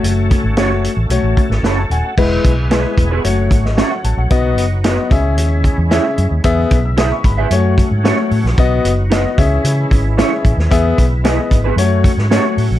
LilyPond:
<<
  \new Staff \with { instrumentName = "Clean electric guitar" } { \time 4/4 \key fis \dorian \tempo 4 = 112 r4 <cis' fis' a' cis''>16 r4. r16 <cis' fis' a' cis''>16 r8. | r4 <b e' gis' b'>16 r8 <b e' gis' b'>16 r4 <cis' fis' a' cis''>16 r8. | r4 <dis' fis' b' dis''>16 r4. r16 <e' gis' cis'' e''>16 r8. | r4 <e' gis' b' e''>16 r8 <e' gis' b' e''>16 r4 <cis' fis' a' cis''>16 r8. |
r4 <dis' fis' b' dis''>16 r4. r16 <cis' e' gis' cis''>16 r8. | r4 <b e' gis' b'>16 r8 <b e' gis' b'>16 r4 <cis' fis' a' cis''>16 r8. | }
  \new Staff \with { instrumentName = "Grand piano" } { \time 4/4 \key fis \dorian << { r2. <a'' b''>16 a''16 <fis'' gis''>16 fis''16~ | fis''16 r2 r8 dis''16 e''16 fis''16 a''16 fis''16~ | fis''16 r2. r8. | r8. e'''16 dis'''16 cis'''16 b''16 gis''8 r4. r16 |
r1 | r1 | } \\ { <a fis' cis''>8 r8 <a fis' cis''>8 r8 <a fis' cis''>8 r4. | <gis e' b'>8 r8 <gis e' b'>8 r8 <a fis' cis''>8 r4. | <b fis' dis''>8 r8 <b fis' dis''>8 <cis' gis' e''>4 r8 <cis' gis' e''>8 r8 | <b gis' e''>8 r4. <a fis' cis''>8 r8 <a fis' cis''>8 r8 |
<b fis' dis''>8 r8 <b fis' dis''>8 <cis' gis' e''>4 r8 <cis' gis' e''>8 r8 | <b gis' e''>8 r8 <b gis' dis''>8 r8 <a fis' cis''>8 r8 <a fis' cis''>8 r8 | } >> }
  \new Staff \with { instrumentName = "Tonewheel organ" } { \time 4/4 \key fis \dorian << { a'1 | gis'2 fis'2 | fis'4. e'2~ e'8~ | e'2 fis'2~ |
fis'4. e'2~ e'8~ | e'2 fis'2 | } \\ { fis'1 | e'2 cis'2 | dis'4. cis'2~ cis'8 | b2 cis'2 |
dis'4. cis'2~ cis'8 | b2 cis'2 | } >> }
  \new Staff \with { instrumentName = "Tonewheel organ" } { \clef bass \time 4/4 \key fis \dorian << { cis'1 | b2 a2 | b4. gis2~ gis8 | gis2 a2 |
b4. gis2~ gis8~ | gis2 a2 | } \\ { a1 | gis2 fis2~ | fis4. cis2~ cis8~ | cis2 fis2~ |
fis4. e2~ e8~ | e2 fis2 | } >> }
  \new Staff \with { instrumentName = "Fingered electric bass" } { \clef bass \time 4/4 \key fis \dorian fis,,8. gis,,16 fis,,8. a,,16 b,,16 a,,16 r16 gis,,16 fis,,8 dis,,16 r16 | e,,8 b,,4 e,,8 fis,,8 gis,,8. r16 a,,16 ais,,16 | b,,8 fis,,4 cis,8 dis,8. e,8 r16 fis,16 dis,16 | e,8 b,,4 gis,,8 fis,8. gis,8 r16 a,16 ais,,16 |
b,,8 fis,,4 cis,8 cis8 gis,,8. r16 a,,16 dis,16 | e,8 b,,4 gis,,8 fis,8. gis,8 r16 a,16 ais,,16 | }
  \new DrumStaff \with { instrumentName = "Drums" } \drummode { \time 4/4 hh8 <hh bd>8 <hh sn>8 hh8 hh8 <hh bd>16 sn16 <hh sn>8 hh8 | <cymc bd>8 <hh bd>8 <hh sn>8 <hh bd>8 hh8 <hh bd>16 sn16 <hh sn>8 hh8 | <hh bd>8 hh8 <hh sn>8 <hh bd>8 hh8 <hh bd>8 <hh sn>8 hh8 | <hh bd>8 <hh bd>8 <hh sn>8 <hh bd>8 hh8 <hh bd>8 <hh sn>8 hho16 sn16 |
<hh bd>8 hh8 <hh sn>8 <hh bd>8 hh8 <hh bd>8 <hh sn>8 <hh bd>16 sn16 | <hh bd>8 <hh bd>8 <hh sn>8 <hh bd>8 hh8 <hh bd>16 sn16 <hh sn>8 hho8 | }
>>